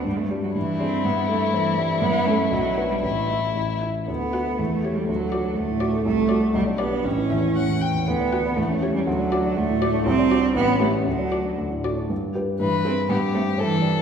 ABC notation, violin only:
X:1
M:2/4
L:1/8
Q:1/4=121
K:Ador
V:1 name="Violin"
z2 E2- | E4- | [K:D] E4 | E3 z |
z f z c | z d z d | z d z d | z e f g |
z f z c | z d z d | z d z c | z d z d |
[K:G] z2 B2 | G2 A2 |]